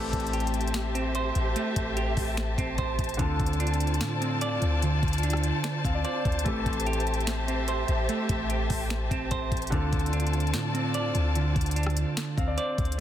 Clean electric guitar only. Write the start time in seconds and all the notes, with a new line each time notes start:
Already playing: A3
0.33 G4
0.95 C4
1.15 C5
1.56 A3
1.97 G4
2.58 C4
2.78 C5
3.19 D3
3.60 D4
4.21 C4
4.42 D5
4.83 D3
5.23 D4
5.84 C4
6.05 D5
6.45 A3
6.87 G4
7.48 C4
7.68 C5
8.09 A3
8.50 G4
9.11 C4
9.31 C5
9.72 D3
10.13 D4
10.74 C4
10.95 D5
11.36 D3
11.76 D4
12.37 C4
12.58 D5